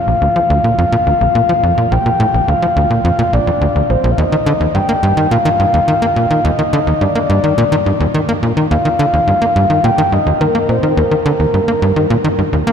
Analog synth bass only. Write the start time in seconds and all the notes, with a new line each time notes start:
0.08 A#1
0.22 D2
0.36 F3
0.50 D2
0.64 A#2
0.78 F2
0.92 A#2
1.07 D2
1.21 A#1
1.35 A#2
1.49 F3
1.63 F2
1.78 A#2
1.92 A#1
2.06 A#2
2.20 A2
2.34 A#1
2.48 D2
2.62 F3
2.76 D2
2.91 A#2
3.05 F2
3.19 A#2
3.33 A#1
3.47 F2
3.61 D2
3.76 D2
3.90 A#1
4.04 A#1
4.18 D#2
4.32 D#3
4.46 D3
4.61 D#2
4.75 G2
4.89 A#3
5.03 G2
5.17 D#3
5.31 A#2
5.45 D#3
5.60 G2
5.74 D#2
5.88 D#3
6.02 A#3
6.16 A#2
6.31 D#3
6.45 D#2
6.59 D#3
6.73 D3
6.87 D#2
7.01 G2
7.15 A#3
7.30 G2
7.44 D#3
7.58 A#2
7.72 D#3
7.86 G2
8.00 D#2
8.14 D#3
8.29 A#3
8.43 A#2
8.57 D#3
8.71 D#2
8.85 D#3
8.99 D3
9.13 D#2
9.28 G2
9.42 A#3
9.56 G2
9.70 D#3
9.84 A#2
9.98 D#3
10.12 G2
10.27 D#2
10.41 D#3
10.55 A#3
10.69 A#2
10.83 D#3
10.97 D#2
11.11 D#3
11.26 D3
11.40 D#2
11.54 G2
11.68 A#3
11.82 G2
11.96 D#3
12.10 A#2
12.24 D#3
12.39 G2
12.53 D#2
12.67 A#3